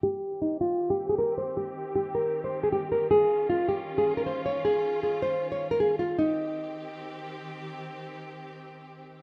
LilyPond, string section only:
\new Staff \with { instrumentName = "String section" } { \time 4/4 \key c \phrygian \tempo 4 = 156 << { <c' g'>1~ | <c' g'>1 | <des' f'>1~ | <des' f'>1 |
<ees c' g'>1~ | <ees c' g'>1 | } \\ { ees1~ | ees1~ | ees1~ | ees1 |
r1 | r1 | } >> }